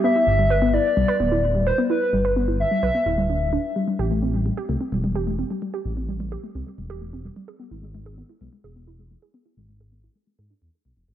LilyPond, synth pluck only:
\new Staff \with { instrumentName = "Synth pluck" } { \time 4/4 \key e \phrygian \tempo 4 = 129 b16 e'16 r16 g16 b'16 b16 e'16 r16 g16 b'16 b16 e'16 r16 g16 b'16 b16 | e'16 r16 g16 b'16 b16 e'16 r16 g16 b'16 b16 e'16 g16 d'16 r16 d'16 r16 | g16 g16 g'16 a16 c'16 g16 g16 g'16 a16 c'16 g16 g16 g'16 a16 c'16 g16 | g16 g'16 a16 c'16 g16 g16 g'16 a16 c'16 g16 g16 g'16 a16 c'16 g16 g16 |
gis'16 b16 e'16 gis16 gis16 gis'16 b16 e'16 gis16 gis16 gis'16 b16 e'16 gis16 gis16 gis'16 | b16 e'16 gis16 gis16 gis'16 b16 e'16 gis16 gis16 gis'16 d'16 r8 gis16 b16 gis'16 | }